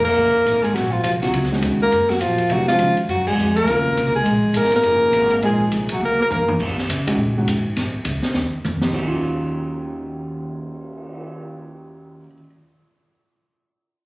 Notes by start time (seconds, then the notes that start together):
Already playing: F1
0.03 A#3 A#4, kick
0.07 crash
0.18 F#1
0.35 muted upright bass stroke
0.46 G#1, hi-hat pedal, ride
0.63 G#3 G#4, ride
0.74 A#1 F#3 F#4, snare, ride
0.91 F3 F4, kick
1.03 C2 F3 F4, hi-hat pedal, ride
1.21 C#3 F#3 C4 F4 F#4, snare, ride
1.33 C#2, ride
1.43 snare
1.52 D#3 G#3 C#4 F#4, snare
1.62 D#2, hi-hat pedal, ride
1.80 A#3 A#4, muted upright bass stroke
1.92 F#2, ride
2.10 F#3 F#4, snare
2.20 A#2 F3 F4, hi-hat pedal, ride
2.38 muted upright bass stroke, ride
2.50 C3 E3 F#3 A3 D4 F#4 G4, ride
2.68 D#3 F3 G#3 C#4 F4 F#4, snare
2.79 C#3, hi-hat pedal, ride
2.97 muted upright bass stroke, ride
3.08 F#2 F#3 F#4, ride
3.27 G#3 G#4, kick, crash
3.37 F2, hi-hat pedal
3.56 A#3 A#4, kick, ride
3.65 D#2 C#3 F#3 C4 F4, ride
3.95 C2, hi-hat pedal, ride
4.15 G#3 G#4
4.25 A#1, ride
4.43 kick
4.53 G#1 A#4, hi-hat pedal, ride
4.58 A#3
4.64 snare
4.72 A#3 A#4, snare, ride
4.83 F#1 F3 A#3 D#4 G#4, ride
5.12 G#1, hi-hat pedal, ride
5.30 ride
5.42 A#1 F3 G#3 A#3 D#4 G#4, ride
5.60 kick
5.72 C2, hi-hat pedal, ride
5.89 F#3, ride
5.93 F#4
6.01 C#2 A#3
6.05 A#4
6.18 A#3 A#4, muted upright bass stroke
6.30 D#2 A#3 A#4, floor tom, hi-hat pedal
6.48 floor tom
6.59 F#2, kick, crash
6.78 snare
6.89 C#3, hi-hat pedal, ride
7.07 D#3 G#3 C#4 F#4, kick, ride
7.18 A#2
7.37 D#3 G#3 C#4 F#4
7.48 G#2, hi-hat pedal, ride
7.77 F#2, snare, ride
7.93 muted upright bass stroke, kick
8.05 C#2, hi-hat pedal, ride
8.23 muted upright bass stroke, snare
8.34 D#2, snare
8.65 F2, hi-hat pedal, high tom
8.82 D#2, snare
8.88 D#3
8.93 D#2 F#3, kick, crash
9.01 C#4
9.07 F4
9.11 cymbal swell